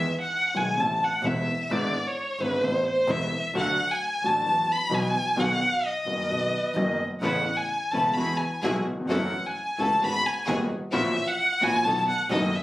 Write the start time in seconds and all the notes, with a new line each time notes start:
Already playing: E5
0.21 F#5
0.54 B1 B2 D#3 G#3 B3 E4 G#5
0.77 A1 A2 C3 E3 A3 E4 A5
1.04 F#5
1.23 E1 E2 C3 E3 A3 E4 E5
1.70 G#1 G#2 D3 G#3 B3 E4 D5
2.07 C#5
2.40 G#1 G#2 D3 G#3 B3 E4 B4
2.62 A1 A2 C3 A3 B3 E4 C5
2.88 C5
3.08 E1 E2 C3 A3 B3 E4 E5
3.54 D2 D3 F#3 A3 F#4 F#5
3.91 G#5
4.23 A1 A2 D3 F#3 A3 F#4 A5
4.45 E2 E3 F#3 B3 F#4
4.71 B5
4.90 B1 B2 E3 F#3 B3 F#4
4.94 G#5
5.37 B1 B2 D#3 F#3 B3 F#4 F#5
5.85 D#5
6.06 F#1 F#2 D#3 F#3 B3 F#4
6.23 A#4
6.29 B1 B2 D#3 F#3 B3 F#4 B4
6.75 F#1 F#2 D#3 F#3 B3 F#4 D#5
7.22 A1 A2 C#3 A3 B3 C#4 E4 A4 B4 F#5
7.57 G#5
7.91 E1 E2 C#3 A3 B3 C#4 E4 A4 B4 A5
8.13 E2 E3 G#3 B3 E4 F#4 G#4 B5
8.17 F#4
8.37 G#5
8.63 B1 B2 E3 G#3 B3 E4 F#4 G#4
8.95 D#2
8.99 E2
9.05 F2 E4 F#4
9.09 F#1 F#2 E3 F#3 A3 C#4 F#4 A4 F#5
9.46 G#5
9.77 C#2 C#3 E3 A3 C#4 E4 F#4 A4 A5
10.00 G#1 G#2 D#3 G#3 B3 F#4 G#4 B5
10.26 G#5
10.46 D#1 D#2 D#3 G#3 B3 F#4 G#4
10.91 A#1 A#2 E3 A#3 C#4 E4 F#4 E5
11.27 F#5
11.60 A#1 A#2 E3 A#3 C#4 E4 F#4 G#5
11.84 B1 B2 D#3 A3 B3 D#4 F#4 A4 A5
12.09 F#5
12.30 F#1 F#2 D#3 A3 B3 D#4 F#4 A4 D#5
12.55 E5